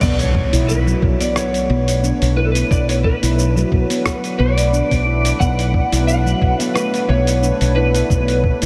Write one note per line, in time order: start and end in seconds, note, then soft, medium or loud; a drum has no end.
0.01 0.42 B1 loud
0.01 8.66 A3 medium
0.01 0.18 B3 medium
0.01 8.66 D4 medium
0.01 8.66 B4 loud
0.01 0.18 D5 medium
0.01 kick loud
0.01 crash loud
0.01 impact medium
0.01 shaker medium
0.19 0.70 C#5 medium
0.19 open hi-hat soft
0.19 shaker soft
0.35 kick loud
0.53 0.93 B1 medium
0.53 0.68 E4 loud
0.53 open hi-hat medium
0.53 shaker medium
0.68 1.17 B4 medium
0.68 shaker medium
0.87 1.01 F#3 loud
0.87 shaker soft
1.02 1.14 B1 medium
1.02 kick loud
1.20 1.29 B3 medium
1.20 1.35 D5 medium
1.20 open hi-hat medium
1.20 shaker medium
1.36 2.36 C#5 medium
1.36 cross-stick medium
1.36 shaker medium
1.54 open hi-hat soft
1.54 shaker soft
1.70 2.11 B1 medium
1.70 2.02 B3 loud
1.88 open hi-hat medium
1.88 shaker medium
2.03 2.21 D4 medium
2.03 shaker medium
2.22 2.62 B1 medium
2.22 open hi-hat soft
2.22 shaker soft
2.37 2.54 E4 medium
2.37 2.45 B4 medium
2.45 2.51 A4 medium
2.52 2.71 B4 medium
2.52 open hi-hat medium
2.56 shaker medium
2.71 3.12 B1 loud
2.71 2.88 B3 medium
2.71 2.88 D5 loud
2.71 kick loud
2.71 shaker medium
2.89 2.94 C#5 medium
2.89 open hi-hat soft
2.89 shaker soft
3.04 4.43 B4 loud
3.04 kick loud
3.23 3.63 B1 loud
3.23 3.37 E4 loud
3.23 open hi-hat medium
3.23 shaker medium
3.39 shaker medium
3.57 3.71 F#3 loud
3.57 shaker soft
3.72 3.83 B1 loud
3.72 kick loud
3.90 3.99 B3 loud
3.90 open hi-hat medium
3.90 shaker medium
4.06 kick medium
4.06 cross-stick medium
4.06 shaker medium
4.24 open hi-hat soft
4.24 shaker soft
4.39 4.81 B1 medium
4.39 4.71 B3 loud
4.39 5.43 D5 loud
4.58 open hi-hat medium
4.58 shaker medium
4.73 4.90 D4 medium
4.73 shaker medium
4.91 5.31 B1 medium
4.91 kick medium
4.91 open hi-hat soft
4.91 shaker soft
5.07 5.24 E4 medium
5.25 open hi-hat medium
5.25 shaker medium
5.40 5.82 B1 loud
5.40 5.58 B3 medium
5.40 6.04 F#5 loud
5.40 kick loud
5.40 shaker medium
5.59 open hi-hat soft
5.59 shaker soft
5.74 kick loud
5.92 6.33 B1 loud
5.92 6.07 E4 loud
5.92 open hi-hat medium
5.92 shaker medium
6.07 6.71 F#5 loud
6.07 shaker medium
6.26 6.41 F#3 loud
6.26 shaker soft
6.42 6.53 B1 loud
6.42 kick loud
6.60 6.69 B3 loud
6.60 open hi-hat medium
6.60 shaker medium
6.75 7.10 B4 loud
6.75 cross-stick medium
6.75 shaker medium
6.94 open hi-hat soft
6.94 shaker soft
7.09 7.50 B1 medium
7.09 7.41 B3 loud
7.09 7.72 C#5 loud
7.27 open hi-hat medium
7.27 shaker medium
7.43 7.60 D4 medium
7.43 shaker medium
7.61 8.01 B1 medium
7.61 open hi-hat soft
7.61 shaker soft
7.76 7.94 E4 medium
7.76 8.66 B4 loud
7.95 open hi-hat medium
7.95 shaker medium
8.10 8.51 B1 loud
8.10 8.27 B3 medium
8.10 kick loud
8.10 shaker medium
8.28 open hi-hat soft
8.28 shaker soft
8.44 kick loud
8.62 8.66 B1 medium
8.62 8.66 E4 loud
8.62 open hi-hat medium
8.62 shaker medium